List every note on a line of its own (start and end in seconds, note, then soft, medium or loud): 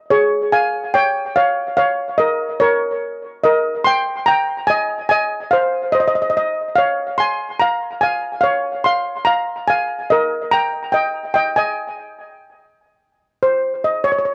0.10 0.49 G#4 medium
0.10 0.53 C#5 medium
0.52 0.91 F5 medium
0.52 0.95 G#5 medium
0.94 1.33 C#5 medium
0.94 1.37 G5 medium
1.36 1.75 C#5 medium
1.36 1.76 F5 medium
1.77 2.16 C#5 medium
1.77 2.20 F5 medium
2.18 2.58 A#4 medium
2.18 2.61 D#5 medium
2.60 3.19 A#4 medium
2.60 3.19 C#5 medium
3.44 3.83 A#4 medium
3.44 3.86 D#5 medium
3.84 4.25 G5 medium
3.84 4.28 C6 loud
4.26 4.66 G5 medium
4.26 4.65 A#5 loud
4.67 5.08 D#5 medium
4.67 5.08 G#5 loud
5.09 5.50 D#5 medium
5.09 5.53 G#5 loud
5.51 5.91 C5 medium
5.51 5.90 F5 medium
5.92 6.02 C5 medium
5.92 5.99 D#5 medium
6.00 6.06 D#5 medium
6.08 6.14 D#5 medium
6.15 6.21 D#5 medium
6.22 6.29 D#5 medium
6.30 6.36 D#5 medium
6.37 6.45 D#5 medium
6.75 7.16 C#5 medium
6.75 7.15 F5 loud
7.18 7.58 G#5 medium
7.18 7.61 C6 medium
7.60 8.00 F5 medium
7.60 8.03 A#5 medium
8.01 8.40 F5 medium
8.01 8.44 G#5 loud
8.41 8.82 C#5 medium
8.41 8.81 F5 medium
8.84 9.24 F5 medium
8.84 9.23 C6 medium
9.25 9.65 F5 medium
9.25 9.69 A#5 loud
9.68 10.08 F5 medium
9.68 10.07 G#5 medium
10.10 10.50 A#4 medium
10.10 10.53 D#5 medium
10.52 10.91 G5 medium
10.52 10.94 A#5 loud
10.92 11.32 D#5 medium
10.92 11.33 G5 medium
11.34 11.55 D#5 medium
11.34 11.56 G5 medium
11.56 12.98 D#5 medium
11.56 12.98 G#5 medium
13.43 13.86 C5 medium
13.84 14.04 D#5 medium
14.04 14.11 C#5 medium
14.12 14.17 C#5 medium
14.19 14.24 C#5 medium
14.25 14.32 C#5 soft